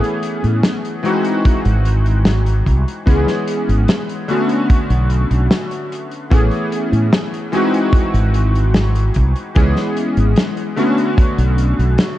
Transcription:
Already playing: electric grand piano E3 A3 B3 C#4 G#4
0.04 closed hi-hat
0.23 closed hi-hat
0.44 fretless electric bass A2, closed hi-hat
0.63 snare, closed hi-hat
0.85 closed hi-hat
1.03 electric grand piano E3 G#3 C4 D#4 F#4, closed hi-hat
1.25 closed hi-hat
1.45 muted fretless electric bass stroke, kick, closed hi-hat
1.65 fretless electric bass G#1, closed hi-hat
1.85 closed hi-hat
2.06 closed hi-hat
2.25 snare, closed hi-hat
2.46 closed hi-hat
2.67 fretless electric bass C2, kick, closed hi-hat
2.88 closed hi-hat
3.06 fretless electric bass C#2, electric grand piano E3 G#3 B3 C#4 G#4, kick, closed hi-hat
3.27 snare, closed hi-hat
3.48 closed hi-hat
3.69 fretless electric bass G#1, closed hi-hat
3.88 snare, closed hi-hat
4.09 closed hi-hat
4.28 electric grand piano D3 A3 B3 C#4 F#4, closed hi-hat
4.49 closed hi-hat
4.70 kick, closed hi-hat
4.90 fretless electric bass B1, closed hi-hat
5.10 closed hi-hat
5.30 fretless electric bass B1, closed hi-hat
5.51 snare, closed hi-hat
5.71 closed hi-hat
5.92 closed hi-hat
6.11 closed hi-hat
6.30 fretless electric bass A1, electric grand piano E3 A3 B3 C#4 G#4, kick, closed hi-hat
6.51 closed hi-hat
6.72 closed hi-hat
6.92 fretless electric bass A2, closed hi-hat
7.13 snare, closed hi-hat
7.34 closed hi-hat
7.52 electric grand piano E3 G#3 C4 D#4 F#4, closed hi-hat
7.74 closed hi-hat
7.93 muted fretless electric bass stroke, kick, closed hi-hat
8.14 fretless electric bass G#1, closed hi-hat
8.34 closed hi-hat
8.55 closed hi-hat
8.74 snare, closed hi-hat
8.95 closed hi-hat
9.14 fretless electric bass C2, kick, closed hi-hat
9.36 closed hi-hat
9.55 fretless electric bass C#2, electric grand piano E3 G#3 B3 C#4 G#4, kick, closed hi-hat
9.76 snare, closed hi-hat
9.97 closed hi-hat
10.17 fretless electric bass G#1, closed hi-hat
10.36 snare, closed hi-hat
10.57 closed hi-hat
10.76 electric grand piano D3 A3 B3 C#4 F#4, closed hi-hat
10.98 closed hi-hat
11.18 kick, closed hi-hat
11.38 fretless electric bass B1, closed hi-hat
11.58 closed hi-hat
11.79 fretless electric bass B1, closed hi-hat
11.98 snare, closed hi-hat

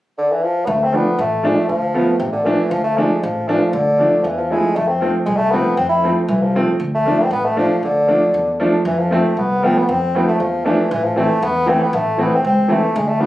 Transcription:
0.19 bassoon D3
0.31 bassoon E3
0.44 bassoon F3
0.65 upright bass D2, bassoon B3
0.69 bassoon A3
0.83 bassoon C4
0.92 upright piano F3 A3 D4, bassoon B3
1.19 upright bass A1, bassoon A3
1.43 upright piano F3 A3 D4, bassoon G#3
1.56 bassoon A3
1.69 upright bass D2, bassoon F3
1.94 upright piano F3 A3 B3
2.19 upright bass A1, bassoon C3
2.32 bassoon D3
2.45 bassoon E3, upright piano F3 A3 D4
2.71 upright bass D2, bassoon F3
2.84 bassoon A3
2.97 upright piano F3 A3 D4, bassoon G#3
3.22 upright bass A1, bassoon F3
3.48 bassoon E3, upright piano F3 A3 D4
3.60 bassoon F3
3.73 upright bass D2, bassoon D3
3.98 upright piano F3 A3 D4
4.22 upright bass E2, bassoon E3 F3
4.37 bassoon F3
4.50 upright piano F3 A3 E4, bassoon G#3
4.76 upright bass F2, bassoon A3
4.88 bassoon C4
5.01 upright piano F3 A3 C4
5.26 upright bass C2, bassoon G#3
5.37 bassoon A3
5.51 upright piano F3 A3 C4, bassoon B3
5.77 upright bass F2, bassoon C4
5.89 bassoon E4
6.04 upright piano F3 A3 C4
6.28 upright bass C2, bassoon E3
6.43 bassoon F3
6.55 upright piano F3 A3 C4
6.80 upright bass D2
6.95 bassoon A3
7.06 upright piano F3 A3 D4
7.19 bassoon C4
7.31 upright bass A1, bassoon B3
7.45 bassoon A3
7.56 upright piano F3 A3 D4, bassoon F3
7.83 upright bass D2, bassoon D3
8.08 upright piano F3 A3 D4
8.34 upright bass E2
8.60 upright piano F3 A3 D4
8.85 upright bass F2, bassoon E3
8.99 bassoon F3
9.11 upright piano F3 A3 C4, bassoon A3
9.37 upright bass C2, bassoon B3
9.63 upright piano F3 A3 B3, bassoon C4
9.78 bassoon B3
9.89 upright bass F2, bassoon C4
10.15 upright piano F3 A3 C4, bassoon B3
10.28 bassoon A3
10.40 upright bass E2, bassoon F3
10.65 bassoon E3, upright piano F3 A3 D4
10.91 upright bass A1, bassoon E3
11.04 bassoon F3
11.16 upright piano E3 A3 C4, bassoon A3
11.42 upright bass E2, bassoon B3
11.66 upright piano E3 A3 C4, bassoon C4
11.82 bassoon B3
11.93 upright bass A1, bassoon A3
12.17 upright piano E3 A3 C4, bassoon B3
12.35 bassoon C4
12.44 upright bass C#2, bassoon C4
12.68 upright piano E3 A3 C4, bassoon A3
12.96 upright bass D2, bassoon G#3
13.08 bassoon A3
13.19 upright piano F3 A3 D4, bassoon B3

